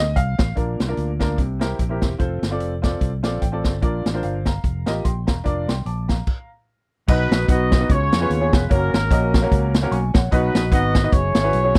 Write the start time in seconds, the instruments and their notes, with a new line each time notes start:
Already playing: upright piano D#5
0.00 fingered electric bass D2
0.16 fingered electric bass C2, upright piano F5, kick, closed hi-hat
0.39 fingered electric bass A1, kick, snare, closed hi-hat
0.55 fingered electric bass A#1, upright piano A#2 A#3 D4 F4 A#4, kick, closed hi-hat
0.80 fingered electric bass C2, snare, closed hi-hat
0.88 upright piano A#3 D4 F4 A#4
0.97 fingered electric bass D2, closed hi-hat
1.19 upright piano A#3 D4 F4 A#4, kick, snare, closed hi-hat
1.38 fingered electric bass C2, upright piano C3, kick, closed hi-hat
1.59 upright piano C4 E4 G4 A#4, snare, closed hi-hat
1.79 fingered electric bass A#1, kick, closed hi-hat
1.89 upright piano C4 E4 G4 A#4
2.01 kick, snare, closed hi-hat
2.18 fingered electric bass F1, upright piano C4 F4 A4 C5, kick, closed hi-hat
2.42 fingered electric bass G1, snare, closed hi-hat
2.51 upright piano C4 F4 A4 D5
2.60 fingered electric bass F1, closed hi-hat
2.82 upright piano C4 F4 A4 D5, kick, snare, closed hi-hat
3.01 fingered electric bass C2, kick, closed hi-hat
3.23 fingered electric bass A#1, upright piano C4 F4 A4 D5 F5, snare, closed hi-hat
3.42 fingered electric bass A1, upright piano G5, kick, closed hi-hat
3.52 upright piano C4 F4 A4 D5 A5
3.64 fingered electric bass G1, kick, snare, closed hi-hat
3.81 fingered electric bass A#1, upright piano A#2 D4 F4 A#4 D5, kick, closed hi-hat
4.06 fingered electric bass A1, snare, closed hi-hat
4.14 upright piano D4 F4 A#4 C5
4.23 fingered electric bass G1, upright piano C5 F5, closed hi-hat
4.45 upright piano F5 A#5, kick, snare, closed hi-hat
4.64 fingered electric bass F1, kick, closed hi-hat
4.86 fingered electric bass A1, upright piano F4 G4 A#4 D#5, snare, closed hi-hat
5.04 fingered electric bass A#1, upright piano G5 C6, kick, closed hi-hat
5.27 fingered electric bass E1, upright piano F5 A#5, kick, snare, closed hi-hat
5.44 fingered electric bass F1, upright piano D4 F4 A#4 D5, kick, closed hi-hat
5.68 fingered electric bass C2, upright piano G5 C6, snare, closed hi-hat
5.86 fingered electric bass A#1, upright piano A5 D6, closed hi-hat
6.08 upright piano F5 A#5, kick, snare, closed hi-hat
6.27 kick, crash
7.08 fingered electric bass B1, upright piano B2 B3 D#4 F#4 B4 D#5, horn section D#4 F#4 B4, kick, crash
7.31 fingered electric bass A#1, snare, closed hi-hat
7.48 fingered electric bass B1, upright piano B3 D#4 F#4 B4 F#5, horn section F#4 B4 D#5, kick, closed hi-hat
7.72 kick, snare, closed hi-hat
7.79 upright piano B3 D#4 F#4 B4 D#5
7.89 fingered electric bass C#2, upright piano C#3, horn section F4 G#4 C#5, kick, closed hi-hat
8.12 fingered electric bass F2, snare, closed hi-hat
8.20 upright piano B3 C#4 F4 G#4 B4
8.30 fingered electric bass D#2, closed hi-hat
8.40 upright piano B3 C#4 F4 G#4 C#5
8.53 fingered electric bass F1, horn section B4, kick, snare, closed hi-hat
8.69 fingered electric bass F#1, upright piano A#3 C#4 F#4 A#4 C#5, horn section C#4 F#4 A#4, kick, closed hi-hat
8.93 fingered electric bass G#1, horn section C#4 F#4 A#4, snare, closed hi-hat
9.10 fingered electric bass A#1, upright piano A#3 C#4 F#4 A#4 D#5, kick, closed hi-hat
9.34 kick, snare, closed hi-hat
9.42 upright piano A#3 C#4 F#4 A#4 C#5
9.52 fingered electric bass C#2, kick, closed hi-hat
9.74 snare, closed hi-hat
9.82 upright piano A#3 C#4 F#4 A#4 C#5
9.91 fingered electric bass B1, upright piano G#5 C#6, closed hi-hat
10.14 fingered electric bass A#1, upright piano C#5 F#5, kick, snare, closed hi-hat
10.31 fingered electric bass B1, upright piano B2 B3 D#4 F#4 B4 D#5, horn section D#4 F#4 B4, kick, closed hi-hat
10.54 fingered electric bass A#1, snare, closed hi-hat
10.71 fingered electric bass G#1, upright piano B3 D#4 F#4 B4 F#5, horn section F#4 B4 D#5, kick, closed hi-hat
10.95 kick, snare, closed hi-hat
11.03 upright piano B3 D#4 F#4 B4 D#5
11.12 fingered electric bass F#1, horn section E4 G#4 C#5, kick, closed hi-hat
11.35 fingered electric bass G#1, snare, closed hi-hat
11.43 upright piano C#4 E4 F#4 G#4 B4
11.53 fingered electric bass B1, closed hi-hat
11.63 upright piano C#4 E4 F#4 G#4 C#5
11.75 horn section B4, kick, snare, closed hi-hat